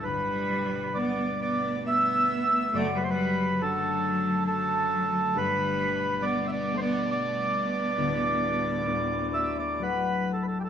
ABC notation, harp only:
X:1
M:3/4
L:1/16
Q:1/4=68
K:G
V:1 name="Harp"
z12 | z12 | z12 | z6 d e f2 a2 |]
V:2 name="Harp" clef=bass
[G,,,G,,]4 [G,A,B,]8 | [F,,,F,,]4 [F,A,D]8 | [G,,,G,,]4 [G,A,B,]8 | [D,,,D,,]4 [D,,,D,,]4 [F,A,D]4 |]